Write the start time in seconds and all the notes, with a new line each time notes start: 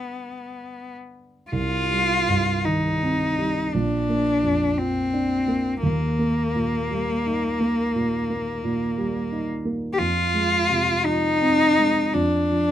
Already playing: G2 D3 G3 B3 D4
1.51 C2 F4
1.91 G3
2.28 G2
2.65 D#3 D#4
3.03 C4
3.38 G3
3.74 A#1 D4
4.09 A#3
4.43 F2
4.78 F3 C4
5.14 D4
5.48 A#3
5.83 D#2 A#3
6.19 A#3
6.55 A#2
6.91 G3
7.26 D#4
7.60 A#3
7.95 A#2
8.30 A#3
8.64 A#2
8.98 G3
9.32 D#4
9.65 A#3
9.93 G4
9.98 F2 F4
10.34 G#3
10.70 C3
11.05 F3 D#4
11.42 C4
11.78 G#3
12.14 F2 D4
12.51 F3